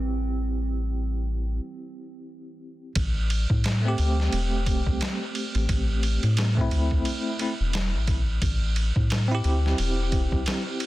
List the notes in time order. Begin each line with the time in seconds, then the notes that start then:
Already playing: A1 E3 G3 C4 E4 G4
2.95 A1, kick, ride
3.30 ride
3.50 A2, kick
3.64 snare, ride
3.82 A3 C4
3.88 G4
3.98 D2, ride
4.20 snare
4.32 E1, ride
4.66 kick, ride
4.86 C2, kick
5.01 snare, ride
5.35 ride
5.55 A1, ride
5.69 A1, kick, ride
6.03 ride
6.23 A2, ride
6.37 snare, ride
6.55 A3 C4, kick
6.61 E4
6.71 D2, ride
6.91 kick
7.05 ride
7.39 A3 C4 E4, ride
7.60 E1
7.73 snare, ride
7.95 A1
8.07 kick, ride
8.42 A1, kick, ride
8.76 ride
8.96 A2, kick
9.10 snare, ride
9.28 C4 E4
9.35 G4
9.44 D2, ride
9.66 snare
9.78 E1, ride
10.12 kick, ride
10.32 C2, kick
10.46 snare, ride
10.80 ride